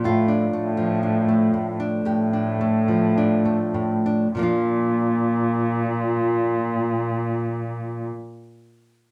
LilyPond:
<<
  \new Staff \with { instrumentName = "Nylon-string guitar" } { \time 4/4 \key bes \major \tempo 4 = 50 << { f'16 d'16 a8 d'16 a8 d'16 g'16 d'16 a8 d'16 a8 d'16 | <f bes d' f'>1 | } \\ { a,8. f8. a,8 a,8. f8. a,8 | bes,1 | } >> }
  \new Staff \with { instrumentName = "Cello" } { \clef bass \time 4/4 \key bes \major a,8 a,4. a,2 | bes,1 | }
>>